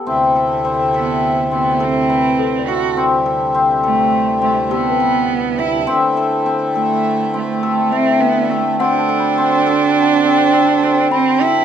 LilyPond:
<<
  \new Staff \with { instrumentName = "Celesta" } { \time 5/4 \key a \dorian \tempo 4 = 103 r1 a'16 d''16 e''8~ | e''2~ e''8. r16 g'16 b'4.~ b'16~ | b'8. r2. r16 b'16 d''8. | fis''16 a''16 b''2.~ b''16 r16 b''4 | }
  \new Staff \with { instrumentName = "Hammered dulcimer" } { \time 5/4 \key a \dorian c'8 a'8 c'8 a'4 c'8 a'8 b'4 a'8 | c'8 a'8 c'8 a'4 c'8 a'8 b4 a'8 | c'8 a'8 c'8 a'4 c'8 a'8 a4 a'8 | c'8 a'8 c'8 a'4 c'8 a'8 c'4 a'8 | }
  \new Staff \with { instrumentName = "Cello" } { \time 5/4 \key a \dorian r4. b4 b8 c'4. fis'8 | r4. a4 a8 b4. e'8 | r4. a4 a4 c'8 b8 a8 | d'1 c'8 e'8 | }
  \new Staff \with { instrumentName = "Harmonium" } { \time 5/4 \key a \dorian <d, e'>1~ <d, e'>4~ | <d, e'>1~ <d, e'>4 | e'1~ e'4 | fis'1~ fis'4 | }
  \new Staff \with { instrumentName = "Harmonium" } { \clef bass \time 5/4 \key a \dorian << { a1~ a4 | g1~ g4 | a1~ a4 | c'1~ c'4 | } \\ { c1~ c4~ | c1~ c4 | d1~ d4~ | d1~ d4 | } >> }
>>